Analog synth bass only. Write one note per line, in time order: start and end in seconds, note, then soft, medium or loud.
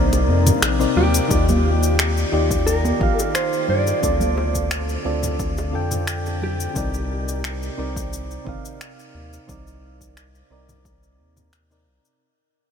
0.00 0.30 C2 medium
0.28 0.52 F2 loud
0.62 0.86 A#1 medium
0.96 1.20 D#2 medium
1.31 2.25 D#2 loud
2.33 2.93 D#2 medium
3.01 3.13 A#1 medium
3.69 3.93 G2 medium
4.03 4.97 D2 loud
5.06 5.75 D2 medium
5.74 6.68 F2 medium
6.76 7.70 C2 loud
7.79 8.39 C2 medium
8.46 8.59 G1 medium
9.15 9.39 D#2 medium
9.49 10.43 C2 medium
10.51 11.21 C2 medium
11.19 11.89 D#2 medium
11.87 12.00 C2 medium